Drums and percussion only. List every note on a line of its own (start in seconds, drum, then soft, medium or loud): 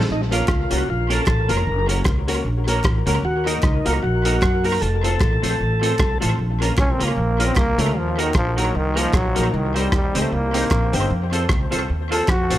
0.00 snare medium
0.32 closed hi-hat medium
0.48 kick loud
0.48 cross-stick medium
0.48 clap medium
0.71 closed hi-hat medium
1.10 closed hi-hat medium
1.26 kick loud
1.26 cross-stick loud
1.26 clap medium
1.49 closed hi-hat medium
1.89 closed hi-hat medium
2.05 kick loud
2.05 cross-stick loud
2.05 clap medium
2.28 closed hi-hat medium
2.68 closed hi-hat medium
2.84 kick loud
2.84 cross-stick loud
2.84 clap medium
3.07 closed hi-hat loud
3.47 closed hi-hat medium
3.63 kick loud
3.63 cross-stick loud
3.63 clap medium
3.86 closed hi-hat medium
4.25 closed hi-hat medium
4.42 kick loud
4.42 cross-stick loud
4.42 clap medium
4.64 open hi-hat medium
4.81 hi-hat pedal medium
5.04 closed hi-hat medium
5.21 kick loud
5.21 cross-stick loud
5.21 clap medium
5.43 closed hi-hat loud
5.83 closed hi-hat medium
5.99 kick loud
5.99 cross-stick loud
5.99 clap medium
6.22 closed hi-hat loud
6.62 closed hi-hat medium
6.78 kick loud
6.78 cross-stick loud
6.78 clap medium
7.00 closed hi-hat medium
7.40 closed hi-hat medium
7.56 kick loud
7.56 cross-stick loud
7.56 clap medium
7.79 closed hi-hat loud
8.19 closed hi-hat medium
8.34 kick loud
8.34 cross-stick loud
8.34 clap medium
8.58 closed hi-hat medium
8.97 closed hi-hat medium
9.13 kick loud
9.13 cross-stick loud
9.13 clap medium
9.36 closed hi-hat loud
9.76 closed hi-hat medium
9.92 kick loud
9.92 cross-stick loud
9.92 clap medium
10.15 closed hi-hat loud
10.54 closed hi-hat medium
10.71 kick loud
10.71 cross-stick loud
10.71 clap medium
10.93 closed hi-hat loud
11.33 closed hi-hat medium
11.49 kick loud
11.49 cross-stick loud
11.49 clap medium
11.72 closed hi-hat loud
12.12 closed hi-hat medium
12.28 kick loud
12.28 cross-stick loud
12.28 clap medium
12.50 closed hi-hat loud